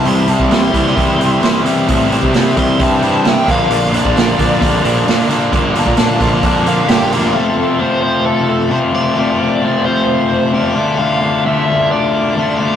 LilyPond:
<<
  \new Staff \with { instrumentName = "Overdriven electric guitar" } { \time 4/4 \key f \major \tempo 4 = 132 << { c'''8 a''8 c'''8 c'''2 r8 | r4. c'''8 a''4 g''8 f''8 | f''8 d''2. r8 | r8 a''4. a''8 f''8 g''8 f''8 |
r1 | r1 | r1 | } \\ { r1 | r1 | r1 | r2. g'8 a'8~ |
a'8 a'8 c''8 c''8 a'8 a'8 c''8 d''8 | d''4. c''4. d''4 | f''4 e''4 d''2 | } >> }
  \new Staff \with { instrumentName = "Distorted electric guitar" } { \time 4/4 \key f \major <c e g c' e'>8 <c e g c' e'>8 <c e g c' e'>8 <c e g c' e'>8 <c e g c' e'>8 <c e g c' e'>8 <c e g c' e'>8 <c e g c' e'>8 | <c e g c' e'>8 <c e g c' e'>8 <c e g c' e'>8 <c e g c' e'>8 <c e g c' e'>8 <c e g c' e'>8 <c e g c' e'>8 <bes, d bes d' f'>8 | <bes, d bes d' f'>8 <bes, d bes d' f'>8 <bes, d bes d' f'>8 <bes, d bes d' f'>8 <bes, d bes d' f'>8 <bes, d bes d' f'>8 <bes, d bes d' f'>8 <bes, d bes d' f'>8 | <bes, d bes d' f'>8 <bes, d bes d' f'>8 <bes, d bes d' f'>8 <bes, d bes d' f'>8 <bes, d bes d' f'>8 <bes, d bes d' f'>8 <bes, d bes d' f'>8 <bes, d bes d' f'>8 |
<f a c' f'>8 <a c' f'>8 <f a c' f'>8 <a c' f'>4. <f a c' f'>8 <a c' f'>8 | <f a c' f'>8 <a c' f'>8 <f a c' f'>8 <a c' f'>4. <f a c' f'>8 <d a d' f'>8 | <d a d' f'>8 <a d' f'>8 <d a d' f'>8 <a d' f'>4. <d a d' f'>8 <a d' f'>8 | }
  \new Staff \with { instrumentName = "Overdriven electric guitar" } { \clef bass \time 4/4 \key f \major <c g c' e'>8 <c g c' e'>8 <c g c' e'>8 <c g c' e'>8 <c g c' e'>8 <c g c' e'>8 <c g c' e'>8 <c g c' e'>8 | <c g c' e'>8 <c g c' e'>8 <c g c' e'>8 <c g c' e'>8 <c g c' e'>8 <c g c' e'>8 <c g c' e'>8 <bes, d f bes d'>8 | <bes, d f bes d'>8 <bes, d f bes d'>8 <bes, d f bes d'>8 <bes, d f bes d'>8 <bes, d f bes d'>8 <bes, d f bes d'>8 <bes, d f bes d'>8 <bes, d f bes d'>8 | <bes, d f bes d'>8 <bes, d f bes d'>8 <bes, d f bes d'>8 <bes, d f bes d'>8 <bes, d f bes d'>8 <bes, d f bes d'>8 <bes, d f bes d'>8 <bes, d f bes d'>8 |
r1 | r1 | r1 | }
  \new Staff \with { instrumentName = "Picked electric bass" } { \clef bass \time 4/4 \key f \major c,8. c,8. c,8 c,8 c,8 r4 | a,,8. c8. c,8 g,4. bes,,8 | bes,,8. bes,,8. bes,,8 bes,,8 bes,,8 r4 | g,,8. bes,8. bes,,8 f,4 g,,8 f,,8 |
r1 | r1 | r1 | }
  \new DrumStaff \with { instrumentName = "Drums" } \drummode { \time 4/4 hho8 hho16 bd16 <hho sn>8 <hho bd>16 sn16 <hho bd>8 hho8 <hho sn>8 hho8 | <hho bd>8 hho16 bd16 <hho sn>8 <hho bd>8 <hho bd>8 hho8 <hho sn>8 <hho bd>8 | hho8 hho16 bd16 <hho sn>8 <hho bd>16 sn16 <hho bd>8 hho8 <hho sn>8 hho8 | <hho bd>8 hho16 bd16 <hho sn>8 <hho bd>8 <hho bd>8 hho8 <hho sn>8 hho8 |
r4 r4 r4 r4 | r4 r4 r4 r4 | r4 r4 r4 r4 | }
>>